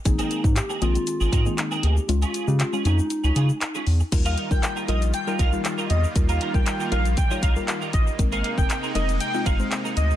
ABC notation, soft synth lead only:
X:1
M:4/4
L:1/8
Q:1/4=118
K:Ebmix
V:1 name="Soft synth lead"
E2 G F3 E G | F2 F E4 z | z8 | z8 |
z8 |]